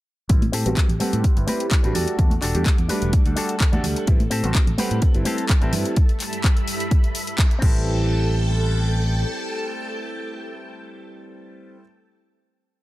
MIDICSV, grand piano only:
0, 0, Header, 1, 2, 480
1, 0, Start_track
1, 0, Tempo, 472441
1, 304, Time_signature, 4, 2, 24, 8
1, 13033, End_track
2, 0, Start_track
2, 0, Title_t, "Grand piano"
2, 0, Program_c, 0, 0
2, 296, Note_on_c, 0, 55, 78
2, 297, Note_on_c, 0, 59, 74
2, 301, Note_on_c, 0, 60, 70
2, 304, Note_on_c, 0, 64, 90
2, 418, Note_off_c, 0, 55, 0
2, 419, Note_off_c, 0, 59, 0
2, 421, Note_off_c, 0, 60, 0
2, 422, Note_off_c, 0, 64, 0
2, 667, Note_on_c, 0, 55, 83
2, 669, Note_on_c, 0, 59, 72
2, 672, Note_on_c, 0, 60, 73
2, 675, Note_on_c, 0, 66, 90
2, 843, Note_off_c, 0, 55, 0
2, 844, Note_off_c, 0, 59, 0
2, 846, Note_off_c, 0, 60, 0
2, 847, Note_off_c, 0, 66, 0
2, 1015, Note_on_c, 0, 55, 82
2, 1017, Note_on_c, 0, 71, 77
2, 1021, Note_on_c, 0, 60, 78
2, 1024, Note_on_c, 0, 78, 96
2, 1356, Note_off_c, 0, 55, 0
2, 1358, Note_off_c, 0, 71, 0
2, 1360, Note_off_c, 0, 60, 0
2, 1361, Note_off_c, 0, 78, 0
2, 1383, Note_on_c, 0, 55, 71
2, 1386, Note_on_c, 0, 71, 67
2, 1389, Note_on_c, 0, 60, 65
2, 1392, Note_on_c, 0, 64, 80
2, 1837, Note_off_c, 0, 55, 0
2, 1838, Note_off_c, 0, 71, 0
2, 1839, Note_off_c, 0, 60, 0
2, 1841, Note_off_c, 0, 64, 0
2, 1863, Note_on_c, 0, 55, 89
2, 1865, Note_on_c, 0, 57, 84
2, 1868, Note_on_c, 0, 62, 85
2, 1871, Note_on_c, 0, 66, 103
2, 2192, Note_off_c, 0, 55, 0
2, 2194, Note_off_c, 0, 57, 0
2, 2195, Note_off_c, 0, 62, 0
2, 2196, Note_off_c, 0, 66, 0
2, 2219, Note_on_c, 0, 55, 80
2, 2221, Note_on_c, 0, 57, 75
2, 2224, Note_on_c, 0, 62, 73
2, 2226, Note_on_c, 0, 66, 90
2, 2340, Note_off_c, 0, 55, 0
2, 2341, Note_off_c, 0, 57, 0
2, 2342, Note_off_c, 0, 62, 0
2, 2343, Note_off_c, 0, 66, 0
2, 2585, Note_on_c, 0, 55, 81
2, 2588, Note_on_c, 0, 57, 73
2, 2590, Note_on_c, 0, 62, 74
2, 2595, Note_on_c, 0, 67, 90
2, 2762, Note_off_c, 0, 55, 0
2, 2764, Note_off_c, 0, 57, 0
2, 2765, Note_off_c, 0, 62, 0
2, 2767, Note_off_c, 0, 67, 0
2, 2938, Note_on_c, 0, 55, 86
2, 2941, Note_on_c, 0, 57, 79
2, 2944, Note_on_c, 0, 62, 78
2, 3278, Note_off_c, 0, 55, 0
2, 3280, Note_off_c, 0, 57, 0
2, 3281, Note_off_c, 0, 62, 0
2, 3308, Note_on_c, 0, 55, 74
2, 3310, Note_on_c, 0, 57, 65
2, 3313, Note_on_c, 0, 62, 67
2, 3315, Note_on_c, 0, 78, 82
2, 3759, Note_off_c, 0, 55, 0
2, 3760, Note_off_c, 0, 57, 0
2, 3762, Note_off_c, 0, 62, 0
2, 3763, Note_off_c, 0, 78, 0
2, 3784, Note_on_c, 0, 55, 93
2, 3786, Note_on_c, 0, 57, 85
2, 3790, Note_on_c, 0, 62, 85
2, 3793, Note_on_c, 0, 78, 104
2, 4113, Note_off_c, 0, 55, 0
2, 4114, Note_off_c, 0, 57, 0
2, 4116, Note_off_c, 0, 62, 0
2, 4117, Note_off_c, 0, 78, 0
2, 4137, Note_on_c, 0, 55, 81
2, 4141, Note_on_c, 0, 59, 77
2, 4143, Note_on_c, 0, 60, 75
2, 4146, Note_on_c, 0, 64, 90
2, 4259, Note_off_c, 0, 55, 0
2, 4261, Note_off_c, 0, 59, 0
2, 4262, Note_off_c, 0, 60, 0
2, 4263, Note_off_c, 0, 64, 0
2, 4506, Note_on_c, 0, 55, 83
2, 4508, Note_on_c, 0, 59, 76
2, 4510, Note_on_c, 0, 60, 75
2, 4513, Note_on_c, 0, 66, 92
2, 4682, Note_off_c, 0, 55, 0
2, 4683, Note_off_c, 0, 59, 0
2, 4685, Note_off_c, 0, 60, 0
2, 4686, Note_off_c, 0, 66, 0
2, 4856, Note_on_c, 0, 55, 86
2, 4859, Note_on_c, 0, 71, 82
2, 4863, Note_on_c, 0, 60, 82
2, 4865, Note_on_c, 0, 78, 98
2, 5197, Note_off_c, 0, 55, 0
2, 5198, Note_off_c, 0, 71, 0
2, 5200, Note_off_c, 0, 60, 0
2, 5202, Note_off_c, 0, 78, 0
2, 5226, Note_on_c, 0, 55, 72
2, 5229, Note_on_c, 0, 71, 66
2, 5232, Note_on_c, 0, 60, 70
2, 5235, Note_on_c, 0, 64, 80
2, 5678, Note_off_c, 0, 55, 0
2, 5679, Note_off_c, 0, 71, 0
2, 5681, Note_off_c, 0, 60, 0
2, 5682, Note_off_c, 0, 64, 0
2, 5706, Note_on_c, 0, 55, 94
2, 5709, Note_on_c, 0, 71, 85
2, 5711, Note_on_c, 0, 60, 90
2, 5714, Note_on_c, 0, 64, 104
2, 6034, Note_off_c, 0, 55, 0
2, 6035, Note_off_c, 0, 71, 0
2, 6036, Note_off_c, 0, 60, 0
2, 6038, Note_off_c, 0, 64, 0
2, 7732, Note_on_c, 0, 55, 85
2, 7739, Note_on_c, 0, 71, 78
2, 7748, Note_on_c, 0, 60, 78
2, 7756, Note_on_c, 0, 64, 94
2, 11975, Note_off_c, 0, 55, 0
2, 11982, Note_off_c, 0, 71, 0
2, 11991, Note_off_c, 0, 60, 0
2, 11999, Note_off_c, 0, 64, 0
2, 13033, End_track
0, 0, End_of_file